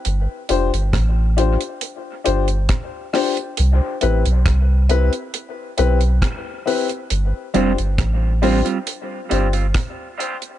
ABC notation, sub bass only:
X:1
M:4/4
L:1/16
Q:1/4=68
K:Gmix
V:1 name="Sub bass" clef=bass
G,,, z F,,, G,,, A,,,3 z3 G,,,2 z4 | C,, z A,,, B,,, C,,3 z3 B,,,2 z4 | G,,, z F,,, G,,, A,,,3 z3 G,,,2 z4 |]